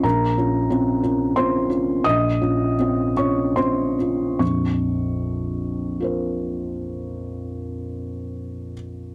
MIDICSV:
0, 0, Header, 1, 2, 480
1, 0, Start_track
1, 0, Key_signature, -5, "minor"
1, 0, Tempo, 654308
1, 32, Time_signature, 3, 2, 24, 8
1, 992, Tempo, 709220
1, 1952, Tempo, 790514
1, 2432, Tempo, 847458
1, 2912, Tempo, 797872
1, 5764, End_track
2, 0, Start_track
2, 0, Title_t, "Felt piano"
2, 0, Program_c, 0, 0
2, 0, Control_c, 0, 64, 127
2, 25, Note_on_c, 0, 82, 70
2, 28, Note_on_c, 0, 34, 50
2, 31, Note_on_c, 0, 70, 55
2, 43, Control_c, 0, 64, 0
2, 167, Control_c, 0, 64, 127
2, 259, Note_off_c, 0, 34, 0
2, 276, Note_on_c, 0, 65, 43
2, 279, Note_on_c, 0, 61, 40
2, 489, Note_off_c, 0, 65, 0
2, 490, Note_off_c, 0, 61, 0
2, 515, Note_on_c, 0, 61, 45
2, 516, Note_on_c, 0, 60, 43
2, 517, Note_on_c, 0, 65, 48
2, 730, Note_off_c, 0, 60, 0
2, 730, Note_off_c, 0, 61, 0
2, 731, Note_off_c, 0, 65, 0
2, 756, Note_on_c, 0, 65, 42
2, 758, Note_on_c, 0, 61, 37
2, 963, Note_off_c, 0, 70, 0
2, 972, Note_off_c, 0, 65, 0
2, 973, Note_off_c, 0, 61, 0
2, 989, Note_off_c, 0, 82, 0
2, 998, Note_on_c, 0, 84, 73
2, 1006, Note_on_c, 0, 72, 51
2, 1007, Note_on_c, 0, 60, 42
2, 1007, Note_on_c, 0, 61, 39
2, 1007, Note_on_c, 0, 65, 42
2, 1206, Note_off_c, 0, 60, 0
2, 1206, Note_off_c, 0, 61, 0
2, 1206, Note_off_c, 0, 65, 0
2, 1225, Note_on_c, 0, 61, 39
2, 1226, Note_on_c, 0, 65, 46
2, 1435, Note_off_c, 0, 61, 0
2, 1436, Note_off_c, 0, 65, 0
2, 1436, Note_off_c, 0, 72, 0
2, 1459, Note_off_c, 0, 84, 0
2, 1460, Note_on_c, 0, 87, 85
2, 1468, Control_c, 0, 64, 0
2, 1471, Note_on_c, 0, 34, 56
2, 1471, Note_on_c, 0, 75, 71
2, 1615, Control_c, 0, 64, 127
2, 1701, Note_off_c, 0, 34, 0
2, 1712, Note_on_c, 0, 61, 41
2, 1712, Note_on_c, 0, 65, 46
2, 1933, Note_off_c, 0, 65, 0
2, 1934, Note_off_c, 0, 61, 0
2, 1965, Note_on_c, 0, 60, 42
2, 1970, Note_on_c, 0, 61, 42
2, 1972, Note_on_c, 0, 65, 41
2, 2169, Note_off_c, 0, 75, 0
2, 2170, Note_off_c, 0, 60, 0
2, 2173, Note_off_c, 0, 61, 0
2, 2174, Note_off_c, 0, 65, 0
2, 2188, Note_off_c, 0, 87, 0
2, 2195, Note_on_c, 0, 85, 53
2, 2198, Note_on_c, 0, 61, 35
2, 2198, Note_on_c, 0, 65, 41
2, 2205, Note_on_c, 0, 73, 40
2, 2414, Note_off_c, 0, 61, 0
2, 2414, Note_off_c, 0, 65, 0
2, 2425, Note_off_c, 0, 73, 0
2, 2431, Note_on_c, 0, 84, 58
2, 2435, Note_on_c, 0, 60, 35
2, 2436, Note_off_c, 0, 85, 0
2, 2438, Note_on_c, 0, 65, 39
2, 2438, Note_on_c, 0, 72, 44
2, 2443, Note_on_c, 0, 61, 34
2, 2653, Note_off_c, 0, 60, 0
2, 2654, Note_off_c, 0, 65, 0
2, 2656, Note_off_c, 0, 61, 0
2, 2674, Note_on_c, 0, 61, 34
2, 2683, Note_on_c, 0, 65, 37
2, 2890, Note_off_c, 0, 61, 0
2, 2892, Note_off_c, 0, 72, 0
2, 2894, Note_off_c, 0, 65, 0
2, 2903, Note_on_c, 0, 85, 42
2, 2904, Note_on_c, 0, 34, 38
2, 2906, Note_on_c, 0, 41, 37
2, 2912, Note_off_c, 0, 84, 0
2, 2926, Control_c, 0, 64, 0
2, 3045, Control_c, 0, 64, 127
2, 3871, Note_on_c, 0, 65, 30
2, 3883, Note_on_c, 0, 70, 31
2, 3894, Note_on_c, 0, 72, 29
2, 5513, Note_off_c, 0, 85, 0
2, 5514, Note_off_c, 0, 34, 0
2, 5515, Note_off_c, 0, 41, 0
2, 5764, Note_off_c, 0, 65, 0
2, 5764, Note_off_c, 0, 70, 0
2, 5764, Note_off_c, 0, 72, 0
2, 5764, End_track
0, 0, End_of_file